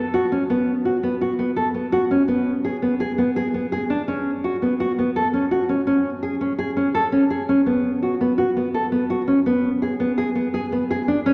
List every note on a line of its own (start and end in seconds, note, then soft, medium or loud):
0.14 0.25 F#4 medium
0.32 0.43 C#4 medium
0.50 0.72 B3 medium
0.85 0.96 F#4 soft
1.03 1.14 B3 soft
1.21 1.32 F#4 medium
1.39 1.50 B3 soft
1.56 1.67 A4 medium
1.74 1.85 B3 soft
1.92 2.03 F#4 medium
2.11 2.22 C#4 medium
2.28 2.50 B3 medium
2.65 2.75 G#4 medium
2.82 2.93 B3 soft
3.00 3.11 G#4 medium
3.18 3.29 B3 medium
3.36 3.47 G#4 medium
3.54 3.65 B3 soft
3.72 3.83 G#4 medium
3.90 4.01 D4 medium
4.08 4.30 C#4 medium
4.44 4.55 F#4 medium
4.62 4.73 B3 soft
4.80 4.91 F#4 medium
4.99 5.09 B3 medium
5.16 5.27 A4 medium
5.34 5.45 C#4 soft
5.51 5.62 F#4 medium
5.69 5.80 C#4 medium
5.87 6.09 C#4 medium
6.23 6.34 G#4 soft
6.41 6.52 C#4 medium
6.58 6.70 G#4 medium
6.77 6.88 C#4 medium
6.94 7.06 A4 medium
7.12 7.23 C#4 soft
7.30 7.41 G#4 medium
7.49 7.60 C#4 medium
7.66 7.88 B3 medium
8.03 8.14 F#4 soft
8.21 8.32 B3 soft
8.38 8.49 F#4 medium
8.57 8.68 B3 soft
8.74 8.85 A4 medium
8.92 9.03 B3 soft
9.10 9.21 F#4 medium
9.28 9.39 C#4 medium
9.46 9.68 B3 medium
9.82 9.93 G#4 medium
10.00 10.11 B3 medium
10.18 10.29 G#4 medium
10.35 10.47 B3 medium
10.54 10.65 G#4 medium
10.72 10.83 B3 medium
10.91 11.01 G#4 medium
11.08 11.19 D4 medium
11.26 11.34 C#4 medium